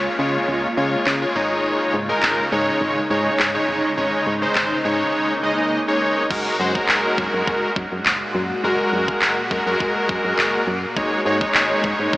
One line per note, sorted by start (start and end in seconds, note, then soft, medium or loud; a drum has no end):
0.00 1.31 C#3 medium
0.00 0.11 G#3 medium
0.00 1.33 A#3 medium
0.00 0.11 F4 medium
0.00 1.32 F4 medium
0.00 0.11 C#5 loud
0.19 0.38 C#3 medium
0.19 0.67 G#3 medium
0.19 0.67 F4 medium
0.19 0.67 C#5 medium
0.48 0.67 C#2 loud
0.77 0.96 C#3 loud
0.77 1.13 G#3 medium
0.77 1.13 F4 medium
0.77 1.13 C#5 medium
1.07 1.25 C#3 loud
1.07 clap loud
1.22 1.34 G#3 medium
1.22 1.36 F4 medium
1.22 1.34 C#5 medium
1.35 1.73 G#1 loud
1.35 6.27 C#3 medium
1.35 1.95 G#3 medium
1.35 3.66 G#3 medium
1.35 6.27 D#4 medium
1.35 1.95 D#4 medium
1.35 1.95 C#5 loud
1.94 2.13 G#2 loud
2.09 2.44 G#3 medium
2.09 2.44 D#4 medium
2.09 2.44 A#4 loud
2.23 2.42 G#1 loud
2.23 clap loud
2.52 2.71 G#2 loud
2.52 3.00 G#3 medium
2.52 3.00 D#4 medium
2.52 3.00 C#5 medium
2.81 3.00 G#1 loud
3.10 3.29 G#2 loud
3.10 3.46 G#3 medium
3.10 3.46 D#4 medium
3.10 3.46 C#5 medium
3.39 3.58 G#2 medium
3.39 clap loud
3.55 3.90 G#3 medium
3.55 3.90 D#4 medium
3.55 3.90 C#5 medium
3.68 3.87 G1 medium
3.68 6.28 A#3 medium
3.97 4.17 G#1 loud
3.97 4.33 G#3 medium
3.97 4.33 D#4 medium
3.97 4.34 C#5 medium
4.27 4.46 G#2 medium
4.42 4.77 G#3 medium
4.42 4.77 D#4 medium
4.42 4.77 C5 medium
4.55 4.75 G#1 loud
4.55 clap loud
4.85 5.04 G#2 loud
4.85 5.33 G#3 medium
4.85 5.33 D#4 medium
4.85 5.33 C#5 medium
5.43 5.79 G#3 medium
5.43 5.79 D#4 medium
5.43 5.79 D#5 medium
5.88 6.23 G#3 medium
5.88 6.23 D#4 medium
5.88 6.23 C#5 medium
6.31 6.50 F#1 loud
6.31 10.93 A#2 medium
6.31 8.61 G#3 medium
6.31 6.55 G#3 medium
6.31 10.93 F#4 medium
6.31 6.55 F#4 medium
6.31 6.55 A#4 medium
6.31 kick loud
6.31 crash medium
6.60 6.79 F#2 loud
6.60 6.72 G#3 medium
6.60 6.72 F#4 medium
6.60 6.73 C5 loud
6.75 7.70 G#3 medium
6.75 7.70 F#4 medium
6.75 7.70 A#4 loud
6.75 kick medium
6.89 7.08 F#1 loud
6.89 clap loud
7.18 7.28 F#2 loud
7.18 kick medium
7.34 7.42 F#2 loud
7.47 7.66 F#1 loud
7.47 kick medium
7.76 7.86 F#2 loud
7.76 kick medium
7.92 8.01 F#2 loud
8.06 8.25 F#1 loud
8.06 clap loud
8.35 8.54 F#2 loud
8.63 8.83 F#1 loud
8.63 9.36 G#3 medium
8.63 10.94 A#3 medium
8.63 9.36 F#4 medium
8.63 9.36 A#4 medium
8.93 9.12 F#2 medium
9.08 kick medium
9.22 9.41 F#1 loud
9.22 clap loud
9.51 9.61 F#2 loud
9.51 9.64 G#3 medium
9.51 9.64 F#4 medium
9.51 9.64 A#4 medium
9.51 kick medium
9.66 9.75 F#2 loud
9.66 10.61 G#3 medium
9.66 10.61 F#4 medium
9.66 10.61 A#4 loud
9.80 9.99 F#1 loud
9.80 kick medium
10.09 10.19 F#2 medium
10.09 kick loud
10.24 10.33 F#2 medium
10.38 10.57 F#1 loud
10.38 clap loud
10.67 10.86 F#2 loud
10.96 11.16 G#1 loud
10.96 12.17 C#3 medium
10.96 12.17 G#3 medium
10.96 11.21 G#3 medium
10.96 12.17 D#4 medium
10.96 11.21 D#4 medium
10.96 11.21 C#5 loud
10.96 kick loud
11.25 11.45 G#2 loud
11.25 11.38 G#3 medium
11.25 11.38 D#4 medium
11.25 11.38 C#5 loud
11.41 12.17 G#3 medium
11.41 12.17 D#4 medium
11.41 12.17 C#5 loud
11.41 kick medium
11.55 11.74 G#1 loud
11.55 clap loud
11.84 11.94 G#2 loud
11.84 kick medium
11.99 12.08 G#2 loud
12.13 12.17 G#1 loud
12.13 kick medium